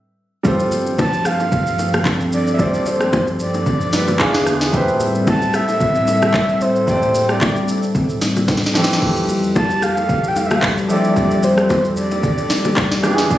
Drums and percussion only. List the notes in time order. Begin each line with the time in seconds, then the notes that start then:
0.45 kick, low conga, shaker
0.60 shaker
0.72 low bongo, shaker
0.87 shaker
0.98 kick, high bongo, low bongo, low conga, shaker
1.13 shaker
1.25 cross-stick, shaker
1.40 high bongo, shaker
1.52 kick, low conga, shaker
1.67 shaker
1.79 high bongo, shaker
1.94 cross-stick, low bongo, shaker
2.05 kick, clap, high bongo, shaker
2.20 shaker
2.32 shaker
2.47 shaker
2.59 kick, low conga, shaker
2.74 shaker
2.86 low bongo, shaker
3.01 cross-stick, shaker
3.13 kick, high bongo, low bongo, low conga, shaker
3.27 shaker
3.40 shaker
3.54 high bongo, shaker
3.66 kick, low conga, shaker
3.81 shaker
3.93 snare, high bongo, shaker
4.08 low bongo, shaker
4.19 kick, clap, high bongo, shaker
4.34 snare, shaker
4.47 cross-stick, shaker
4.61 snare, shaker
4.73 kick, low conga, shaker
4.88 shaker
5.00 low bongo, shaker
5.15 shaker
5.27 kick, high bongo, low bongo, low conga, shaker
5.42 shaker
5.54 cross-stick, shaker
5.69 high bongo, shaker
5.80 kick, low conga, shaker
5.95 shaker
6.07 high bongo, shaker
6.22 cross-stick, low bongo, shaker
6.34 kick, clap, high bongo, shaker
6.49 shaker
6.61 shaker
6.76 shaker
6.88 kick, low conga, shaker
7.02 shaker
7.15 low bongo, shaker
7.29 cross-stick, shaker
7.41 kick, clap, high bongo, low bongo, low conga, shaker
7.56 shaker
7.68 shaker
7.83 shaker
7.95 kick, low conga, shaker
8.09 shaker
8.21 snare, high bongo, shaker
8.36 low bongo, shaker
8.48 kick, snare, high bongo, shaker
8.57 snare
8.63 snare, shaker
8.75 snare, shaker
8.84 snare
8.90 snare, shaker
9.02 kick, crash, low conga
9.17 shaker
9.29 low bongo, shaker
9.44 shaker
9.56 kick, high bongo, low bongo, low conga, shaker
9.70 shaker
9.82 cross-stick, shaker
9.97 high bongo, shaker
10.09 kick, low conga, shaker
10.24 shaker
10.36 high bongo, shaker
10.51 cross-stick, low bongo, shaker
10.62 kick, clap, high bongo, shaker
10.78 shaker
10.90 shaker
11.04 shaker
11.16 kick, low conga, shaker
11.31 shaker
11.43 low bongo, shaker
11.58 cross-stick, shaker
11.70 kick, high bongo, low bongo, low conga, shaker
11.85 shaker
11.97 shaker
12.11 high bongo, shaker
12.23 kick, low conga, shaker
12.38 shaker
12.50 snare, high bongo, shaker
12.65 low bongo, shaker
12.76 kick, clap, high bongo, shaker
12.92 snare, shaker
13.04 cross-stick, shaker
13.18 snare, shaker
13.30 kick, low conga, shaker